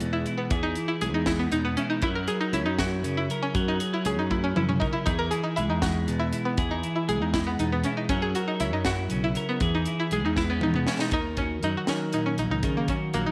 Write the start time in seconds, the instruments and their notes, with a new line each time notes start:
Already playing: clean electric guitar E3 G#3 D#4 E4 G#4
0.00 fingered electric bass E2, clean electric guitar B2, closed hi-hat
0.13 synth pluck E4
0.26 clean electric guitar E4, closed hi-hat
0.38 synth pluck B3
0.50 fingered electric bass E2, clean electric guitar E3 G#4, kick, closed hi-hat
0.63 synth pluck D#4
0.75 clean electric guitar E4, closed hi-hat
0.88 synth pluck E4
1.01 fingered electric bass B1, clean electric guitar G#3, synth pluck G#4, closed hi-hat
1.13 fingered electric bass E2, synth pluck D#4
1.26 clean electric guitar D#4, synth pluck E4, kick, snare, closed hi-hat
1.39 synth pluck B3
1.52 fingered electric bass E2, clean electric guitar B2, synth pluck D#4, closed hi-hat
1.65 synth pluck B3
1.77 synth pluck C#4, clean electric guitar E4, closed hi-hat
1.90 synth pluck D#4
2.02 fingered electric bass F#2, clean electric guitar F#3 A#4, synth pluck E4, kick, closed hi-hat
2.15 synth pluck A#4
2.27 synth pluck G#4, clean electric guitar A#4, closed hi-hat
2.41 synth pluck D#4
2.53 fingered electric bass C#2, clean electric guitar C#4, synth pluck E4, closed hi-hat
2.66 fingered electric bass F#2, synth pluck D#4
2.79 clean electric guitar E4, synth pluck F#4, kick, snare, closed hi-hat
3.03 fingered electric bass F#2, clean electric guitar C#3, closed hi-hat
3.17 synth pluck E4
3.30 clean electric guitar A#4, closed hi-hat
3.43 synth pluck C#4
3.55 fingered electric bass F#2, clean electric guitar F#3 A#4, kick, closed hi-hat
3.68 synth pluck D#4
3.80 clean electric guitar G#4, closed hi-hat
3.93 synth pluck E4, clean electric guitar A#4
4.05 fingered electric bass C#2, clean electric guitar C#4, synth pluck G#4, closed hi-hat
4.19 fingered electric bass F#2, synth pluck D#4
4.31 synth pluck E4, clean electric guitar E4, kick, high tom
4.44 synth pluck C#4
4.56 fingered electric bass F#2, clean electric guitar C#3, synth pluck E4, mid tom
4.69 synth pluck C#4, mid tom
4.80 synth pluck D#4, clean electric guitar A#4, kick
4.93 synth pluck E4
5.06 fingered electric bass E2, clean electric guitar E3 G#4, synth pluck D#4, kick, closed hi-hat
5.19 synth pluck A#4
5.31 clean electric guitar E4, synth pluck G#4, closed hi-hat
5.44 synth pluck D#4
5.56 fingered electric bass B1, clean electric guitar G#3, synth pluck E4, closed hi-hat
5.70 fingered electric bass E2, synth pluck D#4
5.82 clean electric guitar D#4, synth pluck F#4, kick, snare, closed hi-hat
6.08 fingered electric bass E2, clean electric guitar B2, closed hi-hat
6.19 synth pluck E4
6.33 clean electric guitar E4, closed hi-hat
6.45 synth pluck B3
6.58 fingered electric bass E2, clean electric guitar E3 G#4, kick, closed hi-hat
6.71 synth pluck D#4
6.83 clean electric guitar E4, closed hi-hat
6.96 synth pluck E4
7.08 fingered electric bass B1, clean electric guitar G#3, synth pluck G#4, closed hi-hat
7.21 fingered electric bass E2, synth pluck D#4
7.34 clean electric guitar D#4, synth pluck E4, kick, snare, closed hi-hat
7.47 synth pluck B3
7.59 fingered electric bass E2, clean electric guitar B2, synth pluck D#4, closed hi-hat
7.72 synth pluck B3
7.84 synth pluck C#4, clean electric guitar E4, closed hi-hat
7.97 synth pluck D#4
8.09 fingered electric bass F#2, clean electric guitar F#3 A#4, synth pluck C#4, kick, closed hi-hat
8.22 synth pluck G#4
8.35 synth pluck F#4, clean electric guitar A#4, closed hi-hat
8.48 synth pluck D#4
8.60 fingered electric bass C#2, clean electric guitar C#4, synth pluck E4, closed hi-hat
8.73 fingered electric bass F#2, synth pluck D#4
8.85 clean electric guitar E4, synth pluck F#4, kick, snare, closed hi-hat
9.10 fingered electric bass B1, clean electric guitar C#3, closed hi-hat
9.24 synth pluck E4
9.35 clean electric guitar A#4, closed hi-hat
9.49 synth pluck B3
9.60 fingered electric bass E2, clean electric guitar E3 G#4, kick, closed hi-hat
9.75 synth pluck D#4
9.86 clean electric guitar E4, closed hi-hat
10.00 synth pluck E4
10.11 fingered electric bass B1, clean electric guitar G#3, synth pluck G#4, closed hi-hat
10.25 fingered electric bass E2, synth pluck D#4
10.36 clean electric guitar B3, synth pluck E4, kick, snare
10.50 synth pluck B3, clean electric guitar C#4
10.61 fingered electric bass E2, clean electric guitar B2, synth pluck D#4, mid tom
10.74 synth pluck B3, mid tom
10.87 synth pluck C#4, clean electric guitar E4, snare
10.99 synth pluck D#4, snare
11.11 fingered electric bass D#2, clean electric guitar D#3 A#4, synth pluck D#4, kick, closed hi-hat
11.37 synth pluck C#4, clean electric guitar F#4, kick, closed hi-hat
11.63 fingered electric bass F#2, clean electric guitar F#3, synth pluck D#4, closed hi-hat
11.77 synth pluck F#4
11.87 fingered electric bass D#3, synth pluck C#4, clean electric guitar A#4, snare, closed hi-hat
12.13 clean electric guitar A#2, synth pluck D#4, closed hi-hat
12.26 synth pluck C#4
12.38 fingered electric bass A#1, synth pluck D#4, closed hi-hat
12.50 fingered electric bass C#2, synth pluck D#4
12.63 fingered electric bass C#3, clean electric guitar D#3 A#4, kick, closed hi-hat
12.77 synth pluck A#3
12.88 synth pluck C#4, clean electric guitar F#4, kick, closed hi-hat
13.14 fingered electric bass A#1, clean electric guitar F#3, synth pluck A#3, closed hi-hat
13.26 synth pluck D#4